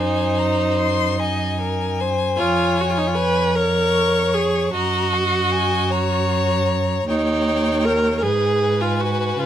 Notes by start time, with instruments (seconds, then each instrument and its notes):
Already playing: cello F#2, viola D#4, violin G#5
0.00 violin C5
0.38 violin A#5
0.79 violin C6
1.19 violin D#5 G#5
1.60 violin A#4
2.00 violin C5
2.37 cello F2, viola F4, violin C#5
2.81 viola F#4
2.90 viola F4
2.98 viola D#4
3.07 viola F4
3.15 viola B4
3.54 viola A#4, violin C#5 C#6
4.34 viola G#4
4.73 cello F#2, viola F#4, violin D#5 A#5
5.13 violin F#5
5.52 violin G#5
5.90 violin C#5 A#5
7.08 cello D#2, viola D#4, violin C#5 G5
7.85 viola A#4
8.17 viola A#4
8.22 cello G#2, viola G#4, violin B4 G#5
8.81 viola F4
9.00 viola F#4
9.39 cello C#3, viola F4